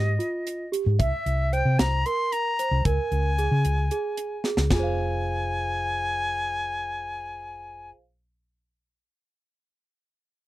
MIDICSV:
0, 0, Header, 1, 5, 480
1, 0, Start_track
1, 0, Key_signature, -4, "minor"
1, 0, Tempo, 531444
1, 894, Time_signature, 7, 3, 24, 8
1, 9456, End_track
2, 0, Start_track
2, 0, Title_t, "Flute"
2, 0, Program_c, 0, 73
2, 0, Note_on_c, 0, 75, 88
2, 626, Note_off_c, 0, 75, 0
2, 903, Note_on_c, 0, 76, 86
2, 1382, Note_on_c, 0, 79, 80
2, 1395, Note_off_c, 0, 76, 0
2, 1616, Note_on_c, 0, 82, 82
2, 1630, Note_off_c, 0, 79, 0
2, 1861, Note_on_c, 0, 84, 88
2, 1874, Note_off_c, 0, 82, 0
2, 2099, Note_on_c, 0, 82, 82
2, 2112, Note_off_c, 0, 84, 0
2, 2577, Note_on_c, 0, 80, 83
2, 2591, Note_off_c, 0, 82, 0
2, 4015, Note_off_c, 0, 80, 0
2, 4257, Note_on_c, 0, 80, 82
2, 7141, Note_off_c, 0, 80, 0
2, 9456, End_track
3, 0, Start_track
3, 0, Title_t, "Celesta"
3, 0, Program_c, 1, 8
3, 0, Note_on_c, 1, 67, 70
3, 96, Note_off_c, 1, 67, 0
3, 172, Note_on_c, 1, 65, 62
3, 573, Note_off_c, 1, 65, 0
3, 652, Note_on_c, 1, 67, 65
3, 853, Note_off_c, 1, 67, 0
3, 895, Note_on_c, 1, 76, 77
3, 1294, Note_off_c, 1, 76, 0
3, 1380, Note_on_c, 1, 72, 64
3, 1777, Note_off_c, 1, 72, 0
3, 1861, Note_on_c, 1, 70, 60
3, 2257, Note_off_c, 1, 70, 0
3, 2341, Note_on_c, 1, 72, 57
3, 2537, Note_off_c, 1, 72, 0
3, 2579, Note_on_c, 1, 70, 71
3, 2976, Note_off_c, 1, 70, 0
3, 3056, Note_on_c, 1, 68, 58
3, 3455, Note_off_c, 1, 68, 0
3, 3536, Note_on_c, 1, 68, 59
3, 3935, Note_off_c, 1, 68, 0
3, 4011, Note_on_c, 1, 68, 59
3, 4212, Note_off_c, 1, 68, 0
3, 4254, Note_on_c, 1, 65, 54
3, 4291, Note_on_c, 1, 68, 53
3, 4330, Note_on_c, 1, 72, 54
3, 4363, Note_on_c, 1, 77, 54
3, 7138, Note_off_c, 1, 65, 0
3, 7175, Note_off_c, 1, 68, 0
3, 7214, Note_off_c, 1, 72, 0
3, 7246, Note_off_c, 1, 77, 0
3, 9456, End_track
4, 0, Start_track
4, 0, Title_t, "Fingered electric bass"
4, 0, Program_c, 2, 33
4, 0, Note_on_c, 2, 44, 69
4, 154, Note_off_c, 2, 44, 0
4, 780, Note_on_c, 2, 44, 76
4, 885, Note_off_c, 2, 44, 0
4, 899, Note_on_c, 2, 36, 82
4, 1004, Note_off_c, 2, 36, 0
4, 1137, Note_on_c, 2, 36, 71
4, 1458, Note_off_c, 2, 36, 0
4, 1493, Note_on_c, 2, 48, 68
4, 1601, Note_off_c, 2, 48, 0
4, 1615, Note_on_c, 2, 36, 74
4, 1830, Note_off_c, 2, 36, 0
4, 2450, Note_on_c, 2, 36, 81
4, 2559, Note_off_c, 2, 36, 0
4, 2577, Note_on_c, 2, 37, 79
4, 2683, Note_off_c, 2, 37, 0
4, 2813, Note_on_c, 2, 37, 67
4, 3136, Note_off_c, 2, 37, 0
4, 3174, Note_on_c, 2, 49, 71
4, 3281, Note_off_c, 2, 49, 0
4, 3296, Note_on_c, 2, 37, 62
4, 3510, Note_off_c, 2, 37, 0
4, 4130, Note_on_c, 2, 37, 65
4, 4239, Note_off_c, 2, 37, 0
4, 4249, Note_on_c, 2, 29, 66
4, 7132, Note_off_c, 2, 29, 0
4, 9456, End_track
5, 0, Start_track
5, 0, Title_t, "Drums"
5, 181, Note_on_c, 9, 42, 56
5, 271, Note_off_c, 9, 42, 0
5, 422, Note_on_c, 9, 42, 71
5, 512, Note_off_c, 9, 42, 0
5, 662, Note_on_c, 9, 42, 52
5, 753, Note_off_c, 9, 42, 0
5, 900, Note_on_c, 9, 36, 88
5, 900, Note_on_c, 9, 42, 76
5, 990, Note_off_c, 9, 36, 0
5, 991, Note_off_c, 9, 42, 0
5, 1142, Note_on_c, 9, 42, 55
5, 1232, Note_off_c, 9, 42, 0
5, 1383, Note_on_c, 9, 42, 47
5, 1473, Note_off_c, 9, 42, 0
5, 1619, Note_on_c, 9, 38, 94
5, 1619, Note_on_c, 9, 42, 79
5, 1710, Note_off_c, 9, 38, 0
5, 1710, Note_off_c, 9, 42, 0
5, 1859, Note_on_c, 9, 42, 54
5, 1950, Note_off_c, 9, 42, 0
5, 2099, Note_on_c, 9, 42, 70
5, 2189, Note_off_c, 9, 42, 0
5, 2340, Note_on_c, 9, 42, 51
5, 2430, Note_off_c, 9, 42, 0
5, 2575, Note_on_c, 9, 42, 63
5, 2577, Note_on_c, 9, 36, 90
5, 2666, Note_off_c, 9, 42, 0
5, 2667, Note_off_c, 9, 36, 0
5, 2816, Note_on_c, 9, 42, 48
5, 2906, Note_off_c, 9, 42, 0
5, 3057, Note_on_c, 9, 42, 48
5, 3147, Note_off_c, 9, 42, 0
5, 3293, Note_on_c, 9, 42, 62
5, 3384, Note_off_c, 9, 42, 0
5, 3532, Note_on_c, 9, 42, 50
5, 3623, Note_off_c, 9, 42, 0
5, 3771, Note_on_c, 9, 42, 61
5, 3861, Note_off_c, 9, 42, 0
5, 4009, Note_on_c, 9, 38, 45
5, 4100, Note_off_c, 9, 38, 0
5, 4129, Note_on_c, 9, 38, 62
5, 4219, Note_off_c, 9, 38, 0
5, 4249, Note_on_c, 9, 38, 79
5, 4249, Note_on_c, 9, 52, 64
5, 4250, Note_on_c, 9, 36, 75
5, 4340, Note_off_c, 9, 38, 0
5, 4340, Note_off_c, 9, 52, 0
5, 4341, Note_off_c, 9, 36, 0
5, 9456, End_track
0, 0, End_of_file